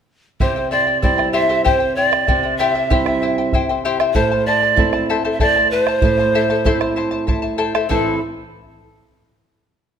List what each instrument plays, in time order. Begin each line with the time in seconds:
0.40 nylon-string guitar C3, charango E4 G4 C5 E5 G5, pan flute C5, bombo low
0.56 charango E4 C5 G5
0.70 charango E4 C5 E5 G5, pan flute D5
0.87 charango E4 C5 G5
1.02 nylon-string guitar G3 C4 E4, charango E4 C5 E5 G5, pan flute D5, bombo low
1.18 charango E4 C5 G5, bombo rim
1.32 charango E4 G4 C5 E5 G5, pan flute E5
1.49 charango E4 G4 C5 E5 G5
1.64 charango E4 G4 C5 E5 G5, pan flute C5, bombo low
1.80 charango E4 C5 G5
1.95 charango E4 C5 E5 G5, pan flute D5
2.11 charango E4 C5 G5, bombo rim
2.27 nylon-string guitar C3, charango E4 C5 E5 G5, bombo low
2.43 charango E4 C5 G5
2.57 charango E4 G4 C5 E5 G5, pan flute E5
2.75 charango E4 G4 C5 E5 G5
2.90 nylon-string guitar G3 C4 E4, charango E4 G4 C5 E5 G5, bombo low
3.06 charango E4 C5 G5, bombo rim
3.22 charango E4 C5 E5 G5
3.38 charango E4 C5 G5
3.53 charango E4 C5 E5 G5, bombo low
3.69 charango E4 C5 G5
3.85 charango E4 G4 C5 E5 G5
4.00 charango E4 G4 C5 E5 G5, bombo rim
4.14 nylon-string guitar A2, charango E4 A4 C5 E5 A5, pan flute C5, bombo low
4.31 charango E4 C5 A5
4.46 charango E4 C5 E5 A5, pan flute D5
4.63 charango E4 C5 A5
4.76 nylon-string guitar A3 C4 E4, charango E4 C5 E5 A5, bombo low
4.93 charango E4 C5 A5, bombo rim
5.09 charango E4 A4 C5 E5 A5
5.25 charango E4 A4 C5 E5 A5
5.32 pan flute E5
5.40 charango E4 A4 C5 E5 A5, pan flute D5, bombo low
5.56 charango E4 C5 A5
5.71 charango E4 C5 E5 A5, pan flute B4
5.84 pan flute C5, bombo rim
5.88 charango E4 C5 A5
6.02 nylon-string guitar A2, charango E4 C5 E5 A5, bombo low
6.18 charango E4 C5 A5, bombo rim
6.35 charango E4 A4 C5 E5 A5
6.50 charango E4 A4 C5 E5 A5, bombo rim
6.65 nylon-string guitar A3 C4 E4, charango E4 A4 C5 E5 A5, bombo low
6.81 charango E4 C5 A5, bombo rim
6.96 charango E4 C5 E5 A5
7.11 charango E4 C5 A5, bombo rim
7.27 charango E4 C5 E5 A5, bombo low
7.42 charango E4 C5 A5
7.58 charango E4 A4 C5 E5 A5, bombo rim
7.75 charango E4 A4 C5 E5 A5, bombo rim
7.89 nylon-string guitar A2 E3 A3 C4 E4, charango E4 A4 C5 E5 A5, pan flute A4, bombo low